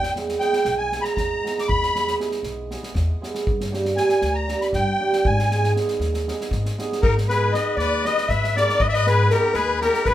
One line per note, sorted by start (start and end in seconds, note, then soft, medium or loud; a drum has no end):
0.00 0.35 E2 medium
0.00 0.13 G5 medium
0.00 snare soft
0.16 0.39 G#3 medium
0.16 0.32 B3 medium
0.16 0.32 E4 medium
0.16 0.32 G#4 medium
0.16 snare soft
0.29 snare soft
0.39 0.91 G#3 medium
0.39 0.56 B3 medium
0.39 0.56 E4 medium
0.39 0.57 G#4 medium
0.39 0.75 G5 medium
0.39 snare soft
0.53 snare soft
0.65 0.96 B1 medium
0.65 snare soft
0.78 1.02 G#5 medium
0.92 1.42 G#3 medium
0.92 1.08 B3 soft
0.92 1.08 E4 medium
0.92 1.09 G#4 medium
0.92 snare soft
1.01 1.13 A#5 medium
1.01 1.04 B5 medium
1.01 snare soft
1.15 1.33 E2 medium
1.15 1.62 A#5 medium
1.15 kick medium
1.15 snare soft
1.43 1.93 G#3 medium
1.43 1.60 B3 medium
1.43 1.60 E4 medium
1.43 1.60 G#4 medium
1.43 snare soft
1.58 1.68 D6 medium
1.58 snare soft
1.68 2.13 E2 medium
1.68 2.15 B5 loud
1.68 kick medium
1.83 snare soft
1.95 2.16 G#3 medium
1.95 2.10 B3 medium
1.95 2.11 E4 medium
1.95 2.11 G#4 medium
1.95 snare soft
2.08 snare soft
2.18 2.69 G#3 medium
2.18 2.34 B3 medium
2.18 2.34 E4 medium
2.18 2.35 G#4 medium
2.18 snare soft
2.31 snare soft
2.43 2.74 B1 medium
2.43 snare soft
2.70 3.20 G#3 medium
2.70 2.86 B3 medium
2.70 2.86 E4 medium
2.70 2.87 G#4 medium
2.70 snare soft
2.83 snare soft
2.94 3.11 E2 medium
2.94 kick medium
2.94 snare soft
3.21 3.52 G#3 medium
3.21 3.38 B3 medium
3.21 3.38 E4 medium
3.21 3.38 G#4 medium
3.21 snare soft
3.35 snare soft
3.47 3.93 G2 medium
3.47 kick medium
3.61 snare soft
3.71 3.95 G3 medium
3.71 3.88 A#3 medium
3.71 3.88 D4 medium
3.71 3.88 G4 medium
3.71 snare soft
3.85 snare soft
3.96 4.46 G3 medium
3.96 4.12 A#3 medium
3.96 4.13 D4 medium
3.96 4.13 G4 medium
3.96 4.36 G#5 medium
3.96 snare soft
4.09 snare soft
4.21 4.53 D2 medium
4.21 snare soft
4.34 4.62 A#5 medium
4.47 4.98 G3 medium
4.47 4.64 A#3 medium
4.47 4.64 D4 soft
4.47 4.65 G4 medium
4.47 snare soft
4.61 4.67 B5 medium
4.61 snare soft
4.73 4.90 G2 loud
4.73 5.27 G5 medium
4.73 kick medium
4.73 snare soft
4.99 5.30 G3 medium
4.99 5.16 A#3 medium
4.99 5.16 D4 medium
4.99 5.16 G4 medium
5.13 snare soft
5.25 5.70 G#2 loud
5.25 5.72 G#5 medium
5.25 kick medium
5.39 snare soft
5.50 5.74 G#3 medium
5.50 5.66 B3 medium
5.50 5.67 D#4 medium
5.50 5.67 G#4 medium
5.50 snare soft
5.64 snare soft
5.75 6.26 G#3 medium
5.75 5.91 B3 medium
5.75 5.91 D#4 medium
5.75 5.91 G#4 medium
5.75 snare soft
5.88 snare soft
5.99 6.30 D#2 medium
5.99 snare soft
6.14 snare soft
6.27 6.77 G#3 medium
6.27 6.43 B3 medium
6.27 6.43 D#4 medium
6.27 6.43 G#4 medium
6.27 snare soft
6.41 snare soft
6.51 6.68 G#2 loud
6.51 kick medium
6.51 snare soft
6.65 snare soft
6.78 7.08 G#3 medium
6.78 6.94 B3 medium
6.78 6.95 D#4 medium
6.78 6.95 G#4 loud
6.78 snare soft
6.92 snare soft
7.02 7.48 G#2 medium
7.02 7.15 D#4 medium
7.02 7.14 A#4 loud
7.02 kick loud
7.18 snare soft
7.28 7.51 G#3 medium
7.28 7.45 B3 medium
7.28 7.45 D#4 medium
7.28 7.52 G#4 medium
7.28 7.45 G#4 medium
7.28 7.54 B4 loud
7.28 7.45 B4 medium
7.28 snare soft
7.52 8.02 G#3 medium
7.52 7.69 B3 medium
7.52 7.68 D#4 medium
7.52 7.69 G#4 medium
7.52 7.77 B4 medium
7.52 7.75 D#5 medium
7.52 snare soft
7.76 8.08 D#2 medium
7.76 8.04 B4 loud
7.76 8.05 D5 medium
7.76 snare soft
8.04 8.54 G#3 medium
8.04 8.20 B3 medium
8.04 8.20 D#4 medium
8.04 8.20 G#4 medium
8.04 8.21 B4 medium
8.04 8.29 B4 medium
8.04 8.30 D#5 loud
8.04 snare soft
8.18 snare soft
8.28 8.60 G#2 loud
8.28 8.55 B4 medium
8.28 8.56 E5 loud
8.28 kick medium
8.28 snare soft
8.44 snare soft
8.55 9.04 G#3 medium
8.55 8.71 B3 medium
8.55 8.71 D#4 medium
8.55 8.72 G#4 medium
8.55 8.80 A#4 medium
8.55 8.72 B4 medium
8.55 8.82 D5 loud
8.55 snare soft
8.69 snare soft
8.80 9.25 G#2 loud
8.80 8.88 B4 medium
8.80 8.87 D#5 loud
8.80 kick medium
8.88 8.94 D5 medium
8.88 8.94 E5 medium
8.93 9.06 B4 loud
8.93 9.07 D#5 loud
8.93 snare soft
9.05 9.28 G#3 medium
9.05 9.21 B3 medium
9.05 9.22 D#4 medium
9.05 9.22 G#4 medium
9.05 9.30 G#4 medium
9.05 9.22 B4 medium
9.05 9.32 B4 loud
9.05 snare soft
9.29 9.79 G#3 medium
9.29 9.46 B3 medium
9.29 9.46 D#4 medium
9.29 9.54 G4 medium
9.29 9.46 G#4 medium
9.29 9.56 A#4 loud
9.29 snare soft
9.54 9.86 D#2 medium
9.54 9.80 G#4 loud
9.54 9.80 B4 medium
9.54 snare soft
9.81 10.14 G#3 medium
9.81 9.97 B3 medium
9.81 9.97 D#4 medium
9.81 10.05 G4 medium
9.81 9.97 G#4 medium
9.81 10.07 A#4 loud
9.81 snare soft
9.93 snare soft
10.05 10.14 G#2 medium
10.05 10.14 G#4 medium
10.05 10.14 B4 loud
10.05 kick medium
10.05 snare soft